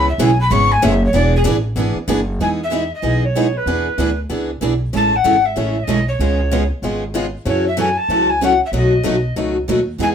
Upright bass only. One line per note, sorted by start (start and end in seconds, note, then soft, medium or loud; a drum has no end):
0.00 0.17 C#2 loud
0.18 0.49 B1 medium
0.50 0.81 G#1 medium
0.83 1.13 F#1 loud
1.14 1.44 E1 loud
1.45 1.75 A1 medium
1.76 1.94 G#1 medium
1.95 muted upright bass stroke soft
2.08 2.39 F#1 loud
2.39 2.90 E2 medium
3.03 3.54 B1 medium
3.66 3.92 E2 medium
3.98 4.25 D2 medium
4.30 4.57 C#2 medium
4.61 4.88 B1 medium
4.93 5.19 A1 medium
5.24 5.51 G#1 medium
5.57 5.83 A1 medium
5.88 6.15 B1 medium
6.19 6.70 C#2 medium
6.82 7.33 G#1 medium
7.45 7.96 F#2 medium
8.09 8.60 C#2 medium
8.72 8.97 B1 medium
9.05 9.32 B1 medium
9.36 9.63 C#2 medium
9.68 9.95 D#2 medium
9.99 10.15 E2 medium